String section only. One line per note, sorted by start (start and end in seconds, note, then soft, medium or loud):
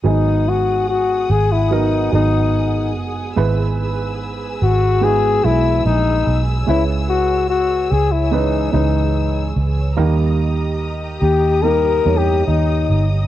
0.05 9.94 G#4 medium
0.05 3.34 F#5 soft
0.05 9.93 G#5 soft
0.05 3.34 D#6 medium
3.37 6.65 B4 soft
3.37 9.94 E6 medium
6.68 9.94 C#5 soft
9.96 13.27 G4 medium
9.96 13.27 D#5 soft
9.96 13.27 A#5 soft
9.96 13.27 D#6 medium